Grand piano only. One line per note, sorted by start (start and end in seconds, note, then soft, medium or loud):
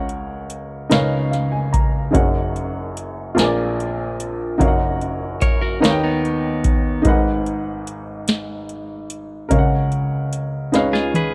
0.00 0.87 C#2 medium
0.00 0.87 C#3 medium
0.00 0.89 A#4 medium
0.00 0.91 C#5 medium
0.00 0.95 F#5 medium
0.90 2.10 C#2 medium
0.90 2.10 C#3 medium
0.90 2.09 D#4 medium
0.90 2.11 A#4 medium
0.90 2.14 B4 medium
0.90 2.12 C#5 medium
0.90 1.30 F5 medium
1.31 1.51 F5 medium
1.52 1.71 G#5 medium
1.73 2.11 A#5 medium
2.11 3.33 F#1 medium
2.11 3.32 F#2 medium
2.11 3.35 D#4 medium
2.11 3.34 G#4 medium
2.11 3.35 A#4 medium
2.11 3.37 C#5 medium
2.15 3.37 F#5 medium
3.35 4.55 A#1 medium
3.35 4.55 A#2 medium
3.35 4.59 F4 medium
3.35 4.59 G#4 medium
3.35 4.58 A#4 medium
3.35 3.44 B4 medium
3.35 4.60 G#5 medium
3.44 4.63 D5 medium
4.58 5.78 F#1 medium
4.58 5.79 F#2 medium
4.58 5.79 D#4 medium
4.58 5.82 F#4 medium
4.58 5.80 A#4 medium
4.58 5.82 C#5 medium
4.58 4.67 F5 medium
4.68 5.87 F#5 medium
5.80 7.01 D#2 medium
5.80 7.01 D#3 medium
5.80 7.00 D#4 medium
5.80 7.03 A#4 medium
5.80 7.05 B4 medium
5.80 7.06 C#5 medium
5.80 5.90 F5 medium
5.91 7.09 G5 medium
7.02 9.47 G#1 medium
7.02 9.47 G#2 medium
7.02 9.45 D#4 medium
7.02 9.46 G#4 medium
7.02 9.47 A#4 medium
7.07 9.48 B4 medium
7.07 9.49 F#5 medium
9.49 10.69 C#2 medium
9.49 10.70 C#3 medium
9.49 10.73 A#4 medium
9.49 10.74 C#5 medium
9.49 9.58 F5 medium
9.59 10.78 F#5 medium
10.72 11.34 C#2 medium
10.72 11.34 C#3 medium
10.72 11.34 D#4 medium
10.72 11.34 G#4 medium
10.72 11.34 B4 medium
10.72 11.34 C#5 medium
10.72 11.34 F5 medium